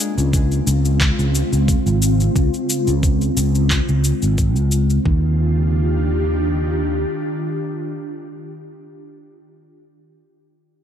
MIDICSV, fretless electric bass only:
0, 0, Header, 1, 2, 480
1, 0, Start_track
1, 0, Key_signature, -3, "major"
1, 0, Tempo, 674157
1, 1675, Time_signature, 4, 2, 24, 8
1, 7715, End_track
2, 0, Start_track
2, 0, Title_t, "Fretless electric bass"
2, 0, Program_c, 0, 35
2, 125, Note_on_c, 0, 37, 74
2, 421, Note_off_c, 0, 37, 0
2, 476, Note_on_c, 0, 37, 91
2, 781, Note_off_c, 0, 37, 0
2, 847, Note_on_c, 0, 37, 92
2, 1006, Note_off_c, 0, 37, 0
2, 1086, Note_on_c, 0, 37, 72
2, 1245, Note_off_c, 0, 37, 0
2, 1326, Note_on_c, 0, 32, 84
2, 1621, Note_off_c, 0, 32, 0
2, 1679, Note_on_c, 0, 37, 85
2, 1766, Note_off_c, 0, 37, 0
2, 2048, Note_on_c, 0, 37, 72
2, 2342, Note_off_c, 0, 37, 0
2, 2399, Note_on_c, 0, 37, 85
2, 2702, Note_off_c, 0, 37, 0
2, 2769, Note_on_c, 0, 37, 82
2, 2927, Note_off_c, 0, 37, 0
2, 3008, Note_on_c, 0, 32, 84
2, 3248, Note_off_c, 0, 32, 0
2, 3248, Note_on_c, 0, 37, 73
2, 3542, Note_off_c, 0, 37, 0
2, 3600, Note_on_c, 0, 39, 77
2, 5009, Note_off_c, 0, 39, 0
2, 7715, End_track
0, 0, End_of_file